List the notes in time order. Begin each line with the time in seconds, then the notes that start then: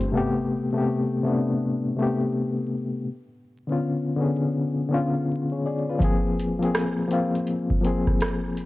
Already playing: G1 A3 B3 C4 G4 B4 C5
0.01 closed hi-hat
0.12 C3 A3 B3
0.17 G4
0.72 C3 A3 B3
0.78 G4
1.23 C3 A3 B3
1.28 D4
1.97 C3 A3 B3
2.02 G4
3.67 D3 B3 C#4
3.72 F4
4.16 D3 B3 C#4
4.22 G#4
4.89 D3 B3 C#4
4.94 F4
5.52 G#4 C#5
5.66 G#4 D5
5.89 F4 B4
5.99 F3 A#3 C4, kick, closed hi-hat
6.04 G#4
6.39 closed hi-hat
6.59 F3 A#3 C4, closed hi-hat
6.65 G#4
6.75 cross-stick, closed hi-hat
7.08 F3 A#3 C4, closed hi-hat
7.13 F4
7.35 closed hi-hat
7.47 closed hi-hat
7.70 kick
7.81 F3 A#3 C4, closed hi-hat
7.87 G#4
8.07 kick, cross-stick
8.21 cross-stick, closed hi-hat
8.57 closed hi-hat